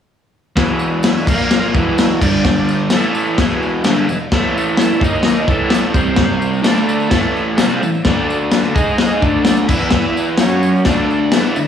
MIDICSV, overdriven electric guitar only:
0, 0, Header, 1, 2, 480
1, 0, Start_track
1, 0, Tempo, 468384
1, 585, Time_signature, 4, 2, 24, 8
1, 11966, End_track
2, 0, Start_track
2, 0, Title_t, "Overdriven electric guitar"
2, 0, Program_c, 0, 29
2, 575, Note_on_c, 0, 40, 85
2, 585, Note_on_c, 0, 47, 93
2, 600, Note_on_c, 0, 52, 106
2, 1293, Note_off_c, 0, 40, 0
2, 1298, Note_off_c, 0, 47, 0
2, 1298, Note_on_c, 0, 46, 94
2, 1313, Note_off_c, 0, 52, 0
2, 1313, Note_on_c, 0, 53, 102
2, 1321, Note_on_c, 0, 58, 104
2, 1774, Note_off_c, 0, 46, 0
2, 1776, Note_on_c, 0, 40, 93
2, 1781, Note_on_c, 0, 47, 85
2, 1782, Note_off_c, 0, 53, 0
2, 1786, Note_off_c, 0, 58, 0
2, 1792, Note_on_c, 0, 52, 101
2, 2253, Note_off_c, 0, 40, 0
2, 2256, Note_off_c, 0, 47, 0
2, 2261, Note_off_c, 0, 52, 0
2, 2265, Note_on_c, 0, 43, 89
2, 2270, Note_on_c, 0, 50, 102
2, 2285, Note_on_c, 0, 55, 97
2, 2967, Note_off_c, 0, 50, 0
2, 2971, Note_on_c, 0, 45, 89
2, 2977, Note_off_c, 0, 43, 0
2, 2979, Note_off_c, 0, 55, 0
2, 2983, Note_on_c, 0, 52, 99
2, 2993, Note_on_c, 0, 57, 97
2, 3450, Note_off_c, 0, 45, 0
2, 3456, Note_off_c, 0, 52, 0
2, 3461, Note_off_c, 0, 57, 0
2, 3475, Note_on_c, 0, 40, 88
2, 3486, Note_on_c, 0, 47, 101
2, 3491, Note_on_c, 0, 52, 109
2, 3930, Note_off_c, 0, 40, 0
2, 3934, Note_on_c, 0, 43, 91
2, 3939, Note_off_c, 0, 47, 0
2, 3939, Note_off_c, 0, 52, 0
2, 3943, Note_on_c, 0, 55, 102
2, 3944, Note_on_c, 0, 50, 94
2, 4171, Note_off_c, 0, 43, 0
2, 4175, Note_off_c, 0, 55, 0
2, 4176, Note_off_c, 0, 50, 0
2, 4187, Note_on_c, 0, 40, 68
2, 4190, Note_on_c, 0, 47, 72
2, 4377, Note_off_c, 0, 40, 0
2, 4378, Note_off_c, 0, 47, 0
2, 4427, Note_on_c, 0, 45, 88
2, 4433, Note_on_c, 0, 52, 90
2, 4445, Note_on_c, 0, 57, 105
2, 5130, Note_off_c, 0, 45, 0
2, 5134, Note_on_c, 0, 51, 98
2, 5137, Note_off_c, 0, 52, 0
2, 5141, Note_on_c, 0, 58, 94
2, 5145, Note_off_c, 0, 57, 0
2, 5154, Note_on_c, 0, 63, 103
2, 5605, Note_off_c, 0, 51, 0
2, 5609, Note_on_c, 0, 45, 93
2, 5613, Note_off_c, 0, 58, 0
2, 5619, Note_off_c, 0, 63, 0
2, 5619, Note_on_c, 0, 52, 93
2, 5628, Note_on_c, 0, 57, 95
2, 6086, Note_off_c, 0, 45, 0
2, 6092, Note_off_c, 0, 52, 0
2, 6094, Note_on_c, 0, 48, 99
2, 6096, Note_off_c, 0, 57, 0
2, 6104, Note_on_c, 0, 55, 89
2, 6117, Note_on_c, 0, 60, 97
2, 6794, Note_off_c, 0, 48, 0
2, 6797, Note_off_c, 0, 55, 0
2, 6798, Note_on_c, 0, 50, 88
2, 6801, Note_on_c, 0, 57, 98
2, 6810, Note_off_c, 0, 60, 0
2, 6814, Note_on_c, 0, 62, 102
2, 7268, Note_off_c, 0, 50, 0
2, 7273, Note_on_c, 0, 45, 96
2, 7282, Note_off_c, 0, 57, 0
2, 7286, Note_on_c, 0, 52, 89
2, 7288, Note_off_c, 0, 62, 0
2, 7301, Note_on_c, 0, 57, 93
2, 7757, Note_off_c, 0, 45, 0
2, 7763, Note_on_c, 0, 48, 89
2, 7764, Note_off_c, 0, 52, 0
2, 7771, Note_off_c, 0, 57, 0
2, 7783, Note_on_c, 0, 55, 95
2, 7786, Note_on_c, 0, 60, 96
2, 8001, Note_off_c, 0, 48, 0
2, 8005, Note_on_c, 0, 45, 61
2, 8012, Note_off_c, 0, 55, 0
2, 8014, Note_off_c, 0, 60, 0
2, 8016, Note_on_c, 0, 52, 65
2, 8203, Note_off_c, 0, 45, 0
2, 8208, Note_off_c, 0, 52, 0
2, 8252, Note_on_c, 0, 50, 82
2, 8270, Note_on_c, 0, 57, 100
2, 8277, Note_on_c, 0, 62, 95
2, 8962, Note_off_c, 0, 57, 0
2, 8966, Note_on_c, 0, 56, 95
2, 8967, Note_off_c, 0, 50, 0
2, 8975, Note_off_c, 0, 62, 0
2, 8979, Note_on_c, 0, 63, 106
2, 8981, Note_on_c, 0, 68, 107
2, 9436, Note_on_c, 0, 50, 89
2, 9444, Note_off_c, 0, 56, 0
2, 9451, Note_off_c, 0, 63, 0
2, 9452, Note_off_c, 0, 68, 0
2, 9456, Note_on_c, 0, 57, 91
2, 9461, Note_on_c, 0, 62, 98
2, 9917, Note_off_c, 0, 50, 0
2, 9921, Note_on_c, 0, 52, 82
2, 9923, Note_off_c, 0, 57, 0
2, 9927, Note_on_c, 0, 59, 96
2, 9932, Note_off_c, 0, 62, 0
2, 9943, Note_on_c, 0, 64, 110
2, 10667, Note_off_c, 0, 52, 0
2, 10667, Note_on_c, 0, 54, 83
2, 10672, Note_off_c, 0, 59, 0
2, 10672, Note_on_c, 0, 61, 93
2, 10688, Note_off_c, 0, 64, 0
2, 10688, Note_on_c, 0, 66, 98
2, 11118, Note_off_c, 0, 54, 0
2, 11122, Note_on_c, 0, 50, 104
2, 11134, Note_off_c, 0, 61, 0
2, 11138, Note_on_c, 0, 57, 102
2, 11146, Note_off_c, 0, 66, 0
2, 11151, Note_on_c, 0, 62, 99
2, 11604, Note_off_c, 0, 50, 0
2, 11610, Note_on_c, 0, 52, 96
2, 11612, Note_off_c, 0, 57, 0
2, 11618, Note_off_c, 0, 62, 0
2, 11621, Note_on_c, 0, 59, 109
2, 11632, Note_on_c, 0, 64, 106
2, 11840, Note_off_c, 0, 59, 0
2, 11844, Note_on_c, 0, 57, 66
2, 11845, Note_off_c, 0, 52, 0
2, 11849, Note_on_c, 0, 50, 67
2, 11859, Note_off_c, 0, 64, 0
2, 11966, Note_off_c, 0, 50, 0
2, 11966, Note_off_c, 0, 57, 0
2, 11966, End_track
0, 0, End_of_file